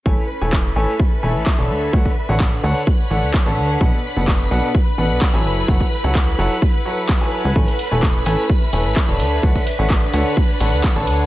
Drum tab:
HH |----------------|----------------|----------------|----------------|
CP |----x-------x---|----x-------x---|----x-------x---|----x-------x---|
BD |o---o---o---o---|oo--o---o---o---|o---o---o---o---|oo--o---o---o---|

HH |-oo---o---o---o-|-oo---o---o---o-|
CP |----x-------x---|----x-------x---|
BD |o---o---o---o---|oo--o---o---o---|